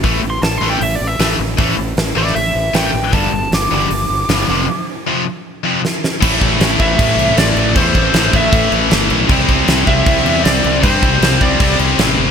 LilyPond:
<<
  \new Staff \with { instrumentName = "Lead electric guitar" } { \time 4/4 \key a \minor \tempo 4 = 156 \tuplet 3/2 { r4 c'''8 a''8 c'''8 g''8 e''8 d''8 e''8 } r4 | r4. d''8 e''4 g''4 | a''4 d'''8 d'''2~ d'''8~ | d'''8 r2. r8 |
r4. e''4. d''4 | c''4. e''4 r4. | r4. e''4. d''4 | c''4. d''4 r4. | }
  \new Staff \with { instrumentName = "Distorted electric guitar" } { \time 4/4 \key a \minor r1 | r1 | r1 | r1 |
<a, e a c' e'>8 <a, e a c' e'>8 <a, e a c' e'>8 <a, e a c' e'>8 <a, e a c' e'>8 <a, e a c' e'>8 <a, e a c' e'>8 <a, e a c' e'>8 | <a, e a c' e'>8 <a, e a c' e'>8 <a, e a c' e'>8 <a, e a c' e'>8 <a, e a c' e'>8 <a, e a c' e'>8 <a, e a c' e'>8 <a, e a c' e'>8 | <c g c' e'>8 <c g c' e'>8 <c g c' e'>8 <c g c' e'>8 <c g c' e'>8 <c g c' e'>8 <c g c' e'>8 <c g c' e'>8 | <c g c' e'>8 <c g c' e'>8 <c g c' e'>8 <c g c' e'>8 <c g c' e'>8 <c g c' e'>8 <c g c' e'>8 <c g c' e'>8 | }
  \new Staff \with { instrumentName = "Distorted electric guitar" } { \clef bass \time 4/4 \key a \minor <a, e a>8 r4 <a, e a>8 r4 <a, e a>8 r8 | <a, e a>8 r4 <a, e a>8 r4 <a, e a>8 r8 | <g, d g>8 r4 <g, d g>8 r4 <g, d g>8 <f, c f>8 | r4 <f, c f>8 r4 <f, c f>8 r4 |
<a, e a>1 | <a, e a>1 | <c g c'>1 | <c g c'>1 | }
  \new Staff \with { instrumentName = "Distorted electric guitar" } { \clef bass \time 4/4 \key a \minor <a, e a>8 r4 <a, e a>8 r4 <a, e a>8 r8 | <a, e a>8 r4 <a, e a>8 r4 <a, e a>8 r8 | <g, d g>8 r4 <g, d g>8 r4 <g, d g>8 <f, c f>8 | r4 <f, c f>8 r4 <f, c f>8 r4 |
<a, e a>4. <a, e a>2~ <a, e a>8 | <a, e a>4. <a, e a>2~ <a, e a>8 | <c g c'>4. <c g c'>2~ <c g c'>8 | <c g c'>4. <c g c'>2~ <c g c'>8 | }
  \new Staff \with { instrumentName = "Fingered electric bass" } { \clef bass \time 4/4 \key a \minor a,,8 a,,8 a,,8 a,,8 a,,8 a,,8 a,,8 a,,8 | a,,8 a,,8 a,,8 a,,8 a,,8 a,,8 a,,8 a,,8 | g,,8 g,,8 g,,8 g,,8 g,,8 g,,8 g,,8 f,,8 | r1 |
a,,8 a,,8 a,,8 a,,8 a,,8 c,8 a,,8 a,,8 | e,8 a,,8 a,,8 a,,8 a,,8 a,,8 g,,8 b,,8 | c,8 c,8 c,8 c,8 c,8 e,8 c,8 c,8 | g,8 c,8 c,8 c,8 c,8 c,8 a,,8 g,,8 | }
  \new DrumStaff \with { instrumentName = "Drums" } \drummode { \time 4/4 <hho bd>4 <hho sn>4 hho4 <hho sn>4 | <hho bd>4 <hho sn>8. sn16 hho4 <hho sn>4 | <hho bd>4 <hho sn>4 hho4 <hho sn>4 | r4 r4 r4 sn8 sn8 |
<cymc bd>8 <cymc bd>8 <cymc sn>8 <cymc bd>8 <cymc bd>8 cymc8 <cymc sn>8 cymc8 | <cymc bd>8 <cymc bd>8 <cymc sn>8 <cymc bd>8 <cymc bd>8 cymc8 <cymc sn>8 cymc8 | <cymc bd>8 <cymc bd>8 <cymc sn>8 <cymc bd>8 <cymc bd>8 cymc8 <cymc sn>8 cymc8 | <cymc bd>8 <cymc bd>8 <cymc sn>8 <cymc bd>8 <cymc bd>8 cymc8 <cymc sn>8 tommh8 | }
>>